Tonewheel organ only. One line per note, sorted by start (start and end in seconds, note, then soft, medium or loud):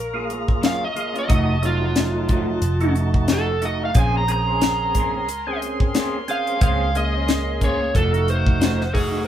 0.13 0.85 A#3 medium
0.13 0.85 F4 medium
0.13 0.86 G#4 medium
0.96 1.25 A#3 medium
0.96 1.25 F4 medium
0.96 1.26 G#4 medium
1.29 1.58 A3 medium
1.29 1.58 D#4 medium
1.29 1.58 F#4 loud
1.62 2.63 F#3 medium
1.62 2.62 A3 medium
1.62 2.63 D#4 medium
2.81 3.52 A3 medium
2.81 3.52 D#4 medium
2.81 3.52 F#4 medium
3.61 3.91 A3 medium
3.61 3.91 D#4 medium
3.61 3.91 F#4 medium
3.94 4.24 C4 medium
3.94 4.24 C#4 medium
3.94 4.24 G#4 medium
4.28 5.28 C4 medium
4.28 5.28 C#4 medium
4.28 5.29 G#4 medium
5.47 6.18 C4 medium
5.47 6.18 C#4 medium
5.47 6.18 G#4 loud
6.28 6.57 C4 medium
6.28 6.57 C#4 medium
6.28 6.58 G#4 medium
6.62 6.91 C4 medium
6.62 6.91 C#4 medium
6.62 6.91 G#4 loud
6.95 7.95 A#3 medium
6.95 7.95 C#4 medium
6.95 7.95 G#4 medium
8.12 8.83 A3 medium
8.12 8.84 D#4 medium
8.12 8.84 F#4 medium
8.93 9.23 A3 medium
8.93 9.23 D#4 medium
8.93 9.23 F#4 medium